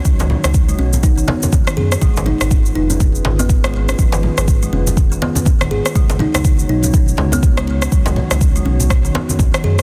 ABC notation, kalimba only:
X:1
M:4/4
L:1/16
Q:"Swing 16ths" 1/4=122
K:C#mix
V:1 name="Kalimba"
F, D, z3 G, C z D D, B, z2 D, G z | G, z D z3 D C z3 B, z G, z C | E, D, z3 G, C z2 D, B, z2 D, G z | G, z D z3 D C z3 B, z G, z C |
F, D, z3 G, C z2 D, B, z2 D, G z |]